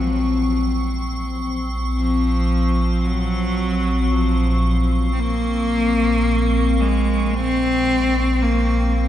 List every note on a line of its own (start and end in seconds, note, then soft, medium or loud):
0.00 9.08 A#1 medium
0.00 0.61 F3 medium
0.00 9.08 C4 medium
0.00 9.08 C#6 medium
1.97 3.07 F3 medium
3.05 4.14 F#3 medium
4.12 4.93 F3 medium
5.13 5.21 C4 medium
5.20 6.82 A#3 loud
6.80 7.35 G#3 loud
7.34 8.43 C4 loud
8.41 9.08 A#3 medium